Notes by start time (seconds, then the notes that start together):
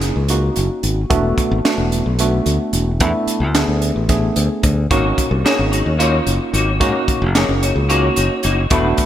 Already playing: F#1 A#3 C#4 D#4 G#4
0.01 snare, closed hi-hat
0.16 C#2
0.28 A#3 C#4 D#4 F#4, closed hi-hat
0.56 F#1, closed hi-hat
0.83 G#1, closed hi-hat
1.10 E1 A3 B3 D4 F#4, kick, closed hi-hat
1.38 muted fingered electric bass stroke, kick, closed hi-hat
1.51 G#1
1.64 A3 B3 D4 F#4, snare, closed hi-hat
1.78 E1
1.92 closed hi-hat
2.06 B1
2.19 A3 B3 D4 F#4, closed hi-hat
2.46 D2, closed hi-hat
2.73 E1, closed hi-hat
3.00 E2 A3 B3 D4 E4, kick, closed hi-hat
3.27 muted fingered electric bass stroke, closed hi-hat
3.40 D2
3.55 A3 B3 D4 G#4, snare, closed hi-hat
3.68 D2
3.82 closed hi-hat
3.96 A1
4.09 A3 B3 D4 G#4, kick, snare, closed hi-hat
4.36 D2, closed hi-hat
4.63 D2, kick, closed hi-hat
4.91 G#1 A#3 C#4 D#4 F#4 C#5, kick, closed hi-hat
5.18 muted fingered electric bass stroke, kick, closed hi-hat
5.31 C2
5.44 A#3 C#4 D#4 F#4 G#4 C#5, muted fingered electric bass stroke, snare, closed hi-hat
5.59 G#1
5.72 D#4 F#4 C#5, closed hi-hat
5.86 D#2
5.98 A#3 C#4 D#4 F4 F#4 C#5, closed hi-hat
6.27 F#1, closed hi-hat
6.53 G#1 A#3 D#4 F#4 C#5, closed hi-hat
6.80 G#2 A#3 C#4 D#4 F#4 C#5, kick, closed hi-hat
7.08 muted fingered electric bass stroke, kick, closed hi-hat
7.22 F#1
7.34 A#3 C#4 D#4 F#4 G#4 C#5, snare, closed hi-hat
7.49 F#1
7.62 D#4 F#4 C#5, closed hi-hat
7.76 C#2
7.89 A#3 C#4 D#4 F#4 C#5, closed hi-hat
8.16 F#1 D#4 F#4 C#5, closed hi-hat
8.43 F#1 A#3 D#4 F#4 C#5, closed hi-hat
8.70 E1 A3 B3 D4 F#4 B4, kick, closed hi-hat
8.98 muted fingered electric bass stroke, kick, closed hi-hat